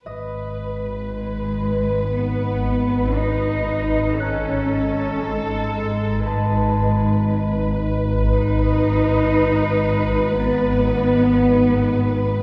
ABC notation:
X:1
M:4/4
L:1/8
Q:1/4=58
K:G#phr
V:1 name="Harp"
[dd']8 | f'4 [aa']4- | [aa']2 z2 a'4 |]
V:2 name="Violin section"
B8 | A4 B4- | B8 |]
V:3 name="Cello section"
z2 G,2 B,2 D2 | C2 G,4- G, z | D4 B,4 |]
V:4 name="Double bass section" clef=bass
G,,,8- | G,,,4 G,,,4- | G,,,8 |]
V:5 name="Synth drone" clef=bass
G,,,8- | G,,,4 G,,,4- | G,,,8 |]